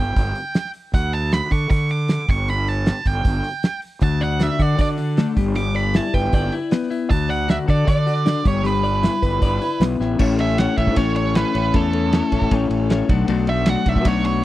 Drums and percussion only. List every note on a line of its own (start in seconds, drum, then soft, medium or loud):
0.16 kick loud
0.16 open hi-hat medium
0.35 open hi-hat soft
0.54 snare loud
0.54 open hi-hat medium
0.65 snare soft
0.74 open hi-hat soft
0.94 kick loud
0.94 open hi-hat medium
1.13 open hi-hat medium
1.32 snare loud
1.32 open hi-hat medium
1.51 kick medium
1.51 open hi-hat soft
1.70 kick loud
1.70 open hi-hat medium
1.89 open hi-hat soft
2.08 snare medium
2.08 open hi-hat medium
2.20 snare soft
2.28 kick loud
2.28 open hi-hat soft
2.48 open hi-hat medium
2.67 open hi-hat soft
2.86 snare loud
2.86 open hi-hat medium
3.06 kick medium
3.06 open hi-hat soft
3.25 kick loud
3.25 open hi-hat medium
3.44 open hi-hat soft
3.63 snare loud
3.63 open hi-hat medium
3.82 open hi-hat soft
4.01 kick medium
4.01 open hi-hat medium
4.21 open hi-hat soft
4.40 snare loud
4.40 open hi-hat medium
4.59 kick medium
4.59 open hi-hat soft
4.79 kick loud
4.79 open hi-hat medium
4.98 open hi-hat soft
5.17 snare loud
5.17 open hi-hat medium
5.37 kick medium
5.37 open hi-hat soft
5.55 open hi-hat medium
5.75 open hi-hat soft
5.94 snare loud
5.94 open hi-hat medium
6.14 kick medium
6.14 open hi-hat soft
6.25 snare soft
6.32 kick loud
6.32 open hi-hat medium
6.52 open hi-hat soft
6.71 snare loud
6.71 open hi-hat medium
6.82 snare soft
6.91 open hi-hat soft
7.11 kick loud
7.11 open hi-hat medium
7.30 open hi-hat soft
7.49 snare loud
7.49 open hi-hat medium
7.68 kick medium
7.68 open hi-hat soft
7.87 kick loud
7.87 open hi-hat medium
8.07 open hi-hat medium
8.26 snare loud
8.26 open hi-hat medium
8.45 kick loud
8.45 open hi-hat medium
8.65 open hi-hat medium
8.84 open hi-hat medium
9.03 snare loud
9.03 open hi-hat medium
9.22 kick medium
9.22 open hi-hat soft
9.42 kick loud
9.42 open hi-hat medium
9.62 open hi-hat soft
9.81 snare loud
9.81 open hi-hat medium
10.01 snare medium
10.19 kick medium
10.19 crash loud
10.39 ride medium
10.50 snare soft
10.58 snare loud
10.58 ride medium
10.77 kick medium
10.77 ride medium
10.87 kick medium
10.96 kick medium
10.96 ride medium
11.16 ride medium
11.35 snare loud
11.35 ride medium
11.55 ride medium
11.74 kick loud
11.74 ride medium
11.93 ride medium
12.13 snare loud
12.13 ride medium
12.32 kick medium
12.32 ride medium
12.42 kick medium
12.51 kick medium
12.51 ride medium
12.71 ride medium
12.90 snare loud
12.90 ride medium
13.09 kick loud
13.09 ride medium
13.28 ride medium
13.47 ride medium
13.66 snare loud
13.66 ride medium
13.86 kick medium
13.86 ride medium
13.96 kick medium
14.05 kick medium
14.05 ride medium
14.25 ride medium